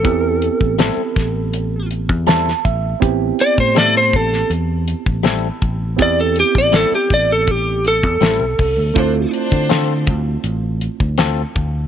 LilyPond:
<<
  \new Staff \with { instrumentName = "Lead electric guitar" } { \time 4/4 \key a \minor \tempo 4 = 81 a'2~ a'8 r4. | r8 d''16 c''16 d''16 c''16 a'8 r2 | d''16 a'16 g'16 d''16 a'16 g'16 d''16 a'16 g'8 a'4.~ | a'8 r2. r8 | }
  \new Staff \with { instrumentName = "String section" } { \time 4/4 \key a \minor r1 | r1 | r1 | <d' f' c''>16 r16 <d' c''>4 r2 r8 | }
  \new Staff \with { instrumentName = "Clean electric guitar" } { \time 4/4 \key a \minor r4 <g c' e' a'>8 r4. <g c' e' a'>8 r8 | r4 <g c' e' a'>8 r4. <g c' e' a'>8 r8 | r4 <g c' e' a'>8 r4. <g c' e' a'>8 r8 | r4 <c' f' a'>8 r4. <c' f' a'>8 r8 | }
  \new Staff \with { instrumentName = "Reed electric piano" } { \time 4/4 \key a \minor << { r2. a''8 e''8 | r1 | r1 | r1 | } \\ { <b c' e' g'>1 | <b c' e' g'>1 | <b c' e' g'>1 | <a c' e' f'>1 | } >> }
  \new Staff \with { instrumentName = "Fingered electric bass" } { \clef bass \time 4/4 \key a \minor e,8. a,,8 r16 a,,4~ a,,16 e,8. a,,8 | a,,8 r16 a,8. a,,8 e,8. a,,8. a,,8 | e,8. a,,8 r16 a,,4~ a,,16 e,16 a,,16 b,,16 c,16 d,16 | d,8 r16 d8. d,8 a,,8. d,8. d,8 | }
  \new DrumStaff \with { instrumentName = "Drums" } \drummode { \time 4/4 <hh bd>8 hh16 bd16 <hh sn>8 <hh bd sn>8 hh8 hh16 bd16 <hh sn>16 sn16 <hh bd>8 | <hh bd>8 hh16 bd16 <hh sn>8 <hh bd>16 sn16 hh8 hh16 bd16 <hh sn>8 <hh bd>8 | <hh bd>8 hh16 bd16 <hh sn>8 <hh bd>8 <hh bd>8 hh16 bd16 <hh sn>8 <hho bd>8 | <hh bd>8 hh16 bd16 <hh sn>8 <hh bd>8 hh8 hh16 bd16 <hh sn>8 <hh bd>8 | }
>>